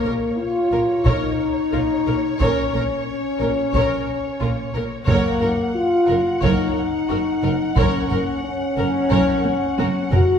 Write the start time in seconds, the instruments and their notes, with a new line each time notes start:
Already playing: french horn section A#3, violin section C#5
0.05 double bass section A#1, cello section A#2, violin section A#4, viola section A#4
0.38 french horn section F4
0.72 double bass section A#1, cello section A#2, violin section A#4, viola section A#4
1.05 double bass section A#1, cello section A#2, french horn section D#4, viola section A#4, violin section C#5, taiko
1.72 double bass section A#1, cello section A#2, violin section F4, viola section A#4
2.06 double bass section A#1, cello section A#2, violin section A#4, viola section A#4
2.40 double bass section A#1, cello section A#2, french horn section C#4, viola section A#4, violin section C#5, taiko
2.74 double bass section A#1, cello section A#2, violin section A#4, viola section A#4
3.07 french horn section C#4
3.39 double bass section A#1, cello section A#2, violin section A#4, viola section A#4
3.73 double bass section A#1, cello section A#2, viola section A#4, violin section C#5, taiko
4.40 double bass section A#1, cello section A#2, violin section F4, viola section A#4
4.74 double bass section A#1, cello section A#2, violin section A#4, viola section A#4
5.07 double bass section F#1, cello section F#2, french horn section A#3, viola section A#4, violin section C#5 F#5, taiko
5.41 double bass section F#1, cello section F#2, viola section A#4, violin section A#4
5.74 french horn section F4
6.07 double bass section F#1, cello section F#2, violin section A#4, viola section A#4
6.41 double bass section F#1, cello section F#2, french horn section D#4, viola section A#4, violin section C#5, taiko
7.09 double bass section F#1, cello section F#2, violin section F#4, viola section A#4
7.43 double bass section F#1, cello section F#2, violin section A#4, viola section A#4
7.76 double bass section F#1, cello section F#2, french horn section C#4, viola section A#4, violin section C#5, taiko
8.11 double bass section F#1, cello section F#2, violin section A#4, viola section A#4
8.44 french horn section C#4
8.77 double bass section F#1, cello section F#2, viola section A#4, violin section A#4
9.11 double bass section F#1, cello section F#2, viola section A#4, violin section C#5, taiko
9.45 taiko high
9.78 double bass section F#1, cello section F#2, violin section F#4, viola section A#4, taiko high
10.11 double bass section F#1, cello section F#2, french horn section F#4, violin section A#4, viola section A#4, taiko low